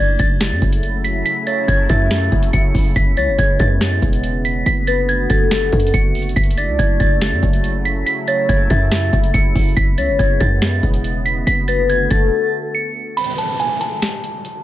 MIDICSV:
0, 0, Header, 1, 7, 480
1, 0, Start_track
1, 0, Key_signature, 3, "minor"
1, 0, Tempo, 425532
1, 1418, Time_signature, 4, 2, 24, 8
1, 16508, End_track
2, 0, Start_track
2, 0, Title_t, "Synth bell"
2, 0, Program_c, 0, 98
2, 0, Note_on_c, 0, 92, 83
2, 186, Note_off_c, 0, 92, 0
2, 221, Note_on_c, 0, 93, 84
2, 1134, Note_off_c, 0, 93, 0
2, 1178, Note_on_c, 0, 95, 80
2, 1386, Note_off_c, 0, 95, 0
2, 1416, Note_on_c, 0, 95, 105
2, 1624, Note_off_c, 0, 95, 0
2, 1656, Note_on_c, 0, 93, 90
2, 1865, Note_off_c, 0, 93, 0
2, 1897, Note_on_c, 0, 92, 93
2, 2105, Note_off_c, 0, 92, 0
2, 2138, Note_on_c, 0, 93, 81
2, 2814, Note_off_c, 0, 93, 0
2, 2856, Note_on_c, 0, 97, 80
2, 3065, Note_off_c, 0, 97, 0
2, 3339, Note_on_c, 0, 95, 102
2, 3546, Note_off_c, 0, 95, 0
2, 3580, Note_on_c, 0, 93, 76
2, 3787, Note_off_c, 0, 93, 0
2, 3821, Note_on_c, 0, 92, 84
2, 4027, Note_off_c, 0, 92, 0
2, 4058, Note_on_c, 0, 93, 83
2, 4973, Note_off_c, 0, 93, 0
2, 5019, Note_on_c, 0, 95, 81
2, 5226, Note_off_c, 0, 95, 0
2, 5259, Note_on_c, 0, 95, 103
2, 5466, Note_off_c, 0, 95, 0
2, 5498, Note_on_c, 0, 93, 83
2, 5705, Note_off_c, 0, 93, 0
2, 5739, Note_on_c, 0, 92, 92
2, 5946, Note_off_c, 0, 92, 0
2, 5977, Note_on_c, 0, 93, 75
2, 6654, Note_off_c, 0, 93, 0
2, 6698, Note_on_c, 0, 97, 76
2, 6906, Note_off_c, 0, 97, 0
2, 7175, Note_on_c, 0, 95, 98
2, 7384, Note_off_c, 0, 95, 0
2, 7418, Note_on_c, 0, 93, 70
2, 7625, Note_off_c, 0, 93, 0
2, 7657, Note_on_c, 0, 92, 83
2, 7865, Note_off_c, 0, 92, 0
2, 7896, Note_on_c, 0, 93, 84
2, 8811, Note_off_c, 0, 93, 0
2, 8859, Note_on_c, 0, 95, 82
2, 9066, Note_off_c, 0, 95, 0
2, 9096, Note_on_c, 0, 95, 99
2, 9304, Note_off_c, 0, 95, 0
2, 9337, Note_on_c, 0, 93, 90
2, 9545, Note_off_c, 0, 93, 0
2, 9576, Note_on_c, 0, 92, 96
2, 9785, Note_off_c, 0, 92, 0
2, 9817, Note_on_c, 0, 93, 82
2, 10494, Note_off_c, 0, 93, 0
2, 10534, Note_on_c, 0, 97, 80
2, 10743, Note_off_c, 0, 97, 0
2, 11015, Note_on_c, 0, 95, 101
2, 11224, Note_off_c, 0, 95, 0
2, 11257, Note_on_c, 0, 93, 77
2, 11465, Note_off_c, 0, 93, 0
2, 11496, Note_on_c, 0, 92, 82
2, 11704, Note_off_c, 0, 92, 0
2, 11736, Note_on_c, 0, 93, 82
2, 12652, Note_off_c, 0, 93, 0
2, 12696, Note_on_c, 0, 95, 82
2, 12905, Note_off_c, 0, 95, 0
2, 12936, Note_on_c, 0, 95, 102
2, 13145, Note_off_c, 0, 95, 0
2, 13175, Note_on_c, 0, 93, 84
2, 13384, Note_off_c, 0, 93, 0
2, 13419, Note_on_c, 0, 92, 93
2, 13626, Note_off_c, 0, 92, 0
2, 13658, Note_on_c, 0, 93, 76
2, 14334, Note_off_c, 0, 93, 0
2, 14378, Note_on_c, 0, 97, 75
2, 14585, Note_off_c, 0, 97, 0
2, 14856, Note_on_c, 0, 83, 97
2, 15064, Note_off_c, 0, 83, 0
2, 15096, Note_on_c, 0, 81, 71
2, 15304, Note_off_c, 0, 81, 0
2, 15338, Note_on_c, 0, 80, 80
2, 15546, Note_off_c, 0, 80, 0
2, 15576, Note_on_c, 0, 81, 82
2, 16491, Note_off_c, 0, 81, 0
2, 16508, End_track
3, 0, Start_track
3, 0, Title_t, "Soft synth lead"
3, 0, Program_c, 1, 80
3, 0, Note_on_c, 1, 74, 89
3, 414, Note_off_c, 1, 74, 0
3, 1657, Note_on_c, 1, 73, 93
3, 2108, Note_off_c, 1, 73, 0
3, 2137, Note_on_c, 1, 76, 81
3, 2814, Note_off_c, 1, 76, 0
3, 3576, Note_on_c, 1, 73, 85
3, 4253, Note_off_c, 1, 73, 0
3, 5500, Note_on_c, 1, 71, 76
3, 5950, Note_off_c, 1, 71, 0
3, 5976, Note_on_c, 1, 69, 90
3, 6653, Note_off_c, 1, 69, 0
3, 7416, Note_on_c, 1, 74, 91
3, 8093, Note_off_c, 1, 74, 0
3, 9335, Note_on_c, 1, 73, 94
3, 9788, Note_off_c, 1, 73, 0
3, 9816, Note_on_c, 1, 76, 85
3, 10494, Note_off_c, 1, 76, 0
3, 11256, Note_on_c, 1, 73, 86
3, 11934, Note_off_c, 1, 73, 0
3, 13179, Note_on_c, 1, 71, 78
3, 13629, Note_off_c, 1, 71, 0
3, 13657, Note_on_c, 1, 69, 92
3, 14334, Note_off_c, 1, 69, 0
3, 16508, End_track
4, 0, Start_track
4, 0, Title_t, "Analog synth pad"
4, 0, Program_c, 2, 89
4, 0, Note_on_c, 2, 49, 82
4, 0, Note_on_c, 2, 54, 75
4, 0, Note_on_c, 2, 57, 74
4, 0, Note_on_c, 2, 64, 91
4, 3298, Note_off_c, 2, 54, 0
4, 3298, Note_off_c, 2, 57, 0
4, 3337, Note_on_c, 2, 56, 76
4, 3337, Note_on_c, 2, 59, 75
4, 5211, Note_off_c, 2, 49, 0
4, 5211, Note_off_c, 2, 64, 0
4, 5238, Note_off_c, 2, 56, 0
4, 5259, Note_on_c, 2, 50, 81
4, 5259, Note_on_c, 2, 57, 75
4, 5259, Note_on_c, 2, 66, 89
4, 7139, Note_off_c, 2, 59, 0
4, 7159, Note_off_c, 2, 50, 0
4, 7159, Note_off_c, 2, 66, 0
4, 7175, Note_on_c, 2, 54, 76
4, 7176, Note_on_c, 2, 49, 84
4, 7176, Note_on_c, 2, 64, 89
4, 10973, Note_off_c, 2, 57, 0
4, 10978, Note_off_c, 2, 49, 0
4, 10978, Note_off_c, 2, 54, 0
4, 11015, Note_on_c, 2, 49, 84
4, 11015, Note_on_c, 2, 56, 75
4, 11015, Note_on_c, 2, 59, 78
4, 12891, Note_off_c, 2, 64, 0
4, 12917, Note_off_c, 2, 49, 0
4, 12917, Note_off_c, 2, 56, 0
4, 12937, Note_on_c, 2, 50, 86
4, 12937, Note_on_c, 2, 57, 76
4, 12937, Note_on_c, 2, 66, 90
4, 14818, Note_off_c, 2, 59, 0
4, 14838, Note_off_c, 2, 50, 0
4, 14838, Note_off_c, 2, 57, 0
4, 14838, Note_off_c, 2, 66, 0
4, 16508, End_track
5, 0, Start_track
5, 0, Title_t, "808-style bass"
5, 0, Program_c, 3, 38
5, 0, Note_on_c, 3, 30, 110
5, 208, Note_off_c, 3, 30, 0
5, 219, Note_on_c, 3, 30, 107
5, 577, Note_on_c, 3, 42, 104
5, 594, Note_off_c, 3, 30, 0
5, 691, Note_off_c, 3, 42, 0
5, 699, Note_on_c, 3, 30, 101
5, 1389, Note_off_c, 3, 30, 0
5, 1898, Note_on_c, 3, 30, 108
5, 2128, Note_off_c, 3, 30, 0
5, 2139, Note_on_c, 3, 42, 104
5, 2599, Note_off_c, 3, 42, 0
5, 2618, Note_on_c, 3, 30, 103
5, 2848, Note_off_c, 3, 30, 0
5, 2858, Note_on_c, 3, 30, 107
5, 3088, Note_off_c, 3, 30, 0
5, 3097, Note_on_c, 3, 30, 110
5, 3328, Note_off_c, 3, 30, 0
5, 3338, Note_on_c, 3, 30, 103
5, 3578, Note_on_c, 3, 37, 104
5, 3595, Note_off_c, 3, 30, 0
5, 3698, Note_on_c, 3, 30, 98
5, 3715, Note_off_c, 3, 37, 0
5, 3812, Note_off_c, 3, 30, 0
5, 3818, Note_on_c, 3, 30, 113
5, 4048, Note_off_c, 3, 30, 0
5, 4058, Note_on_c, 3, 42, 107
5, 4519, Note_off_c, 3, 42, 0
5, 4538, Note_on_c, 3, 28, 105
5, 5229, Note_off_c, 3, 28, 0
5, 5258, Note_on_c, 3, 30, 110
5, 5949, Note_off_c, 3, 30, 0
5, 5979, Note_on_c, 3, 30, 101
5, 6439, Note_off_c, 3, 30, 0
5, 6458, Note_on_c, 3, 42, 102
5, 6688, Note_off_c, 3, 42, 0
5, 6698, Note_on_c, 3, 30, 104
5, 7158, Note_off_c, 3, 30, 0
5, 7178, Note_on_c, 3, 30, 104
5, 7538, Note_on_c, 3, 37, 100
5, 7555, Note_off_c, 3, 30, 0
5, 7652, Note_off_c, 3, 37, 0
5, 7658, Note_on_c, 3, 30, 107
5, 7888, Note_off_c, 3, 30, 0
5, 7898, Note_on_c, 3, 30, 101
5, 8257, Note_on_c, 3, 42, 100
5, 8274, Note_off_c, 3, 30, 0
5, 8371, Note_off_c, 3, 42, 0
5, 8378, Note_on_c, 3, 30, 109
5, 9069, Note_off_c, 3, 30, 0
5, 9577, Note_on_c, 3, 30, 112
5, 9808, Note_off_c, 3, 30, 0
5, 9818, Note_on_c, 3, 42, 102
5, 10278, Note_off_c, 3, 42, 0
5, 10298, Note_on_c, 3, 30, 107
5, 10528, Note_off_c, 3, 30, 0
5, 10538, Note_on_c, 3, 30, 106
5, 10768, Note_off_c, 3, 30, 0
5, 10777, Note_on_c, 3, 30, 109
5, 11008, Note_off_c, 3, 30, 0
5, 11017, Note_on_c, 3, 30, 108
5, 11257, Note_on_c, 3, 37, 100
5, 11273, Note_off_c, 3, 30, 0
5, 11377, Note_on_c, 3, 30, 96
5, 11394, Note_off_c, 3, 37, 0
5, 11491, Note_off_c, 3, 30, 0
5, 11497, Note_on_c, 3, 30, 111
5, 11727, Note_off_c, 3, 30, 0
5, 11738, Note_on_c, 3, 42, 102
5, 12199, Note_off_c, 3, 42, 0
5, 12217, Note_on_c, 3, 28, 105
5, 12909, Note_off_c, 3, 28, 0
5, 12937, Note_on_c, 3, 30, 108
5, 13628, Note_off_c, 3, 30, 0
5, 13657, Note_on_c, 3, 30, 104
5, 13888, Note_off_c, 3, 30, 0
5, 16508, End_track
6, 0, Start_track
6, 0, Title_t, "Downlifter"
6, 0, Program_c, 4, 103
6, 14857, Note_on_c, 4, 60, 87
6, 16508, Note_off_c, 4, 60, 0
6, 16508, End_track
7, 0, Start_track
7, 0, Title_t, "Drums"
7, 215, Note_on_c, 9, 42, 86
7, 218, Note_on_c, 9, 36, 96
7, 328, Note_off_c, 9, 42, 0
7, 331, Note_off_c, 9, 36, 0
7, 457, Note_on_c, 9, 42, 73
7, 459, Note_on_c, 9, 38, 113
7, 461, Note_on_c, 9, 26, 91
7, 570, Note_off_c, 9, 42, 0
7, 572, Note_off_c, 9, 38, 0
7, 574, Note_off_c, 9, 26, 0
7, 698, Note_on_c, 9, 36, 93
7, 698, Note_on_c, 9, 42, 49
7, 811, Note_off_c, 9, 36, 0
7, 811, Note_off_c, 9, 42, 0
7, 819, Note_on_c, 9, 42, 84
7, 931, Note_off_c, 9, 42, 0
7, 937, Note_on_c, 9, 42, 89
7, 1050, Note_off_c, 9, 42, 0
7, 1179, Note_on_c, 9, 42, 74
7, 1292, Note_off_c, 9, 42, 0
7, 1418, Note_on_c, 9, 42, 97
7, 1531, Note_off_c, 9, 42, 0
7, 1655, Note_on_c, 9, 42, 92
7, 1768, Note_off_c, 9, 42, 0
7, 1898, Note_on_c, 9, 36, 89
7, 1899, Note_on_c, 9, 42, 79
7, 2011, Note_off_c, 9, 36, 0
7, 2012, Note_off_c, 9, 42, 0
7, 2136, Note_on_c, 9, 42, 89
7, 2138, Note_on_c, 9, 36, 99
7, 2248, Note_off_c, 9, 42, 0
7, 2251, Note_off_c, 9, 36, 0
7, 2376, Note_on_c, 9, 42, 75
7, 2378, Note_on_c, 9, 38, 112
7, 2380, Note_on_c, 9, 26, 90
7, 2489, Note_off_c, 9, 42, 0
7, 2490, Note_off_c, 9, 38, 0
7, 2492, Note_off_c, 9, 26, 0
7, 2617, Note_on_c, 9, 42, 48
7, 2618, Note_on_c, 9, 36, 92
7, 2730, Note_off_c, 9, 42, 0
7, 2731, Note_off_c, 9, 36, 0
7, 2737, Note_on_c, 9, 42, 82
7, 2850, Note_off_c, 9, 42, 0
7, 2856, Note_on_c, 9, 42, 83
7, 2858, Note_on_c, 9, 36, 96
7, 2969, Note_off_c, 9, 42, 0
7, 2971, Note_off_c, 9, 36, 0
7, 3097, Note_on_c, 9, 36, 89
7, 3098, Note_on_c, 9, 46, 81
7, 3210, Note_off_c, 9, 36, 0
7, 3211, Note_off_c, 9, 46, 0
7, 3338, Note_on_c, 9, 36, 122
7, 3338, Note_on_c, 9, 42, 92
7, 3450, Note_off_c, 9, 36, 0
7, 3451, Note_off_c, 9, 42, 0
7, 3576, Note_on_c, 9, 42, 86
7, 3688, Note_off_c, 9, 42, 0
7, 3818, Note_on_c, 9, 36, 90
7, 3818, Note_on_c, 9, 42, 82
7, 3931, Note_off_c, 9, 36, 0
7, 3931, Note_off_c, 9, 42, 0
7, 4055, Note_on_c, 9, 42, 83
7, 4058, Note_on_c, 9, 36, 96
7, 4167, Note_off_c, 9, 42, 0
7, 4171, Note_off_c, 9, 36, 0
7, 4295, Note_on_c, 9, 42, 76
7, 4297, Note_on_c, 9, 38, 113
7, 4299, Note_on_c, 9, 26, 93
7, 4408, Note_off_c, 9, 42, 0
7, 4410, Note_off_c, 9, 38, 0
7, 4412, Note_off_c, 9, 26, 0
7, 4537, Note_on_c, 9, 42, 49
7, 4538, Note_on_c, 9, 36, 93
7, 4650, Note_off_c, 9, 42, 0
7, 4651, Note_off_c, 9, 36, 0
7, 4658, Note_on_c, 9, 42, 85
7, 4770, Note_off_c, 9, 42, 0
7, 4778, Note_on_c, 9, 42, 87
7, 4890, Note_off_c, 9, 42, 0
7, 5018, Note_on_c, 9, 42, 74
7, 5131, Note_off_c, 9, 42, 0
7, 5259, Note_on_c, 9, 42, 92
7, 5372, Note_off_c, 9, 42, 0
7, 5496, Note_on_c, 9, 42, 89
7, 5609, Note_off_c, 9, 42, 0
7, 5740, Note_on_c, 9, 42, 81
7, 5853, Note_off_c, 9, 42, 0
7, 5975, Note_on_c, 9, 42, 87
7, 5978, Note_on_c, 9, 36, 96
7, 6088, Note_off_c, 9, 42, 0
7, 6091, Note_off_c, 9, 36, 0
7, 6216, Note_on_c, 9, 42, 77
7, 6218, Note_on_c, 9, 38, 113
7, 6220, Note_on_c, 9, 26, 86
7, 6329, Note_off_c, 9, 42, 0
7, 6331, Note_off_c, 9, 38, 0
7, 6333, Note_off_c, 9, 26, 0
7, 6458, Note_on_c, 9, 36, 93
7, 6458, Note_on_c, 9, 42, 48
7, 6538, Note_off_c, 9, 42, 0
7, 6538, Note_on_c, 9, 42, 66
7, 6571, Note_off_c, 9, 36, 0
7, 6618, Note_off_c, 9, 42, 0
7, 6618, Note_on_c, 9, 42, 84
7, 6697, Note_off_c, 9, 42, 0
7, 6697, Note_on_c, 9, 42, 83
7, 6698, Note_on_c, 9, 36, 94
7, 6810, Note_off_c, 9, 42, 0
7, 6811, Note_off_c, 9, 36, 0
7, 6938, Note_on_c, 9, 42, 46
7, 6939, Note_on_c, 9, 46, 77
7, 7018, Note_off_c, 9, 42, 0
7, 7018, Note_on_c, 9, 42, 52
7, 7052, Note_off_c, 9, 46, 0
7, 7099, Note_off_c, 9, 42, 0
7, 7099, Note_on_c, 9, 42, 59
7, 7178, Note_off_c, 9, 42, 0
7, 7178, Note_on_c, 9, 36, 118
7, 7178, Note_on_c, 9, 42, 67
7, 7258, Note_off_c, 9, 42, 0
7, 7258, Note_on_c, 9, 42, 71
7, 7290, Note_off_c, 9, 36, 0
7, 7338, Note_off_c, 9, 42, 0
7, 7338, Note_on_c, 9, 42, 78
7, 7416, Note_off_c, 9, 42, 0
7, 7416, Note_on_c, 9, 42, 91
7, 7529, Note_off_c, 9, 42, 0
7, 7658, Note_on_c, 9, 36, 91
7, 7660, Note_on_c, 9, 42, 80
7, 7771, Note_off_c, 9, 36, 0
7, 7772, Note_off_c, 9, 42, 0
7, 7896, Note_on_c, 9, 42, 89
7, 7898, Note_on_c, 9, 36, 96
7, 8009, Note_off_c, 9, 42, 0
7, 8011, Note_off_c, 9, 36, 0
7, 8137, Note_on_c, 9, 42, 76
7, 8138, Note_on_c, 9, 38, 115
7, 8140, Note_on_c, 9, 26, 88
7, 8250, Note_off_c, 9, 42, 0
7, 8251, Note_off_c, 9, 38, 0
7, 8253, Note_off_c, 9, 26, 0
7, 8378, Note_on_c, 9, 36, 93
7, 8378, Note_on_c, 9, 42, 49
7, 8491, Note_off_c, 9, 36, 0
7, 8491, Note_off_c, 9, 42, 0
7, 8498, Note_on_c, 9, 42, 84
7, 8611, Note_off_c, 9, 42, 0
7, 8617, Note_on_c, 9, 42, 87
7, 8730, Note_off_c, 9, 42, 0
7, 8859, Note_on_c, 9, 42, 73
7, 8972, Note_off_c, 9, 42, 0
7, 9098, Note_on_c, 9, 42, 95
7, 9211, Note_off_c, 9, 42, 0
7, 9335, Note_on_c, 9, 42, 91
7, 9448, Note_off_c, 9, 42, 0
7, 9577, Note_on_c, 9, 36, 89
7, 9578, Note_on_c, 9, 42, 79
7, 9690, Note_off_c, 9, 36, 0
7, 9691, Note_off_c, 9, 42, 0
7, 9815, Note_on_c, 9, 42, 86
7, 9818, Note_on_c, 9, 36, 96
7, 9928, Note_off_c, 9, 42, 0
7, 9931, Note_off_c, 9, 36, 0
7, 10056, Note_on_c, 9, 42, 76
7, 10057, Note_on_c, 9, 38, 112
7, 10059, Note_on_c, 9, 26, 92
7, 10168, Note_off_c, 9, 42, 0
7, 10170, Note_off_c, 9, 38, 0
7, 10172, Note_off_c, 9, 26, 0
7, 10298, Note_on_c, 9, 36, 94
7, 10298, Note_on_c, 9, 42, 50
7, 10410, Note_off_c, 9, 42, 0
7, 10411, Note_off_c, 9, 36, 0
7, 10418, Note_on_c, 9, 42, 84
7, 10530, Note_off_c, 9, 42, 0
7, 10537, Note_on_c, 9, 42, 89
7, 10538, Note_on_c, 9, 36, 98
7, 10650, Note_off_c, 9, 36, 0
7, 10650, Note_off_c, 9, 42, 0
7, 10777, Note_on_c, 9, 36, 93
7, 10778, Note_on_c, 9, 46, 81
7, 10890, Note_off_c, 9, 36, 0
7, 10891, Note_off_c, 9, 46, 0
7, 11017, Note_on_c, 9, 36, 124
7, 11018, Note_on_c, 9, 42, 94
7, 11130, Note_off_c, 9, 36, 0
7, 11130, Note_off_c, 9, 42, 0
7, 11255, Note_on_c, 9, 42, 93
7, 11368, Note_off_c, 9, 42, 0
7, 11497, Note_on_c, 9, 36, 88
7, 11498, Note_on_c, 9, 42, 79
7, 11610, Note_off_c, 9, 36, 0
7, 11611, Note_off_c, 9, 42, 0
7, 11735, Note_on_c, 9, 42, 85
7, 11738, Note_on_c, 9, 36, 99
7, 11848, Note_off_c, 9, 42, 0
7, 11851, Note_off_c, 9, 36, 0
7, 11976, Note_on_c, 9, 42, 75
7, 11978, Note_on_c, 9, 38, 113
7, 11980, Note_on_c, 9, 26, 88
7, 12089, Note_off_c, 9, 42, 0
7, 12091, Note_off_c, 9, 38, 0
7, 12093, Note_off_c, 9, 26, 0
7, 12217, Note_on_c, 9, 42, 49
7, 12218, Note_on_c, 9, 36, 92
7, 12330, Note_off_c, 9, 36, 0
7, 12330, Note_off_c, 9, 42, 0
7, 12337, Note_on_c, 9, 42, 83
7, 12450, Note_off_c, 9, 42, 0
7, 12456, Note_on_c, 9, 42, 84
7, 12569, Note_off_c, 9, 42, 0
7, 12698, Note_on_c, 9, 42, 77
7, 12811, Note_off_c, 9, 42, 0
7, 12938, Note_on_c, 9, 42, 92
7, 13051, Note_off_c, 9, 42, 0
7, 13175, Note_on_c, 9, 42, 89
7, 13288, Note_off_c, 9, 42, 0
7, 13418, Note_on_c, 9, 42, 82
7, 13531, Note_off_c, 9, 42, 0
7, 13654, Note_on_c, 9, 42, 87
7, 13658, Note_on_c, 9, 36, 101
7, 13767, Note_off_c, 9, 42, 0
7, 13771, Note_off_c, 9, 36, 0
7, 14857, Note_on_c, 9, 49, 94
7, 14858, Note_on_c, 9, 42, 88
7, 14938, Note_off_c, 9, 42, 0
7, 14938, Note_on_c, 9, 42, 72
7, 14970, Note_off_c, 9, 49, 0
7, 15017, Note_off_c, 9, 42, 0
7, 15017, Note_on_c, 9, 42, 74
7, 15095, Note_off_c, 9, 42, 0
7, 15095, Note_on_c, 9, 42, 86
7, 15208, Note_off_c, 9, 42, 0
7, 15339, Note_on_c, 9, 42, 78
7, 15452, Note_off_c, 9, 42, 0
7, 15575, Note_on_c, 9, 42, 83
7, 15688, Note_off_c, 9, 42, 0
7, 15817, Note_on_c, 9, 42, 75
7, 15818, Note_on_c, 9, 38, 106
7, 15820, Note_on_c, 9, 26, 86
7, 15930, Note_off_c, 9, 42, 0
7, 15931, Note_off_c, 9, 38, 0
7, 15933, Note_off_c, 9, 26, 0
7, 16060, Note_on_c, 9, 42, 77
7, 16173, Note_off_c, 9, 42, 0
7, 16298, Note_on_c, 9, 42, 82
7, 16410, Note_off_c, 9, 42, 0
7, 16508, End_track
0, 0, End_of_file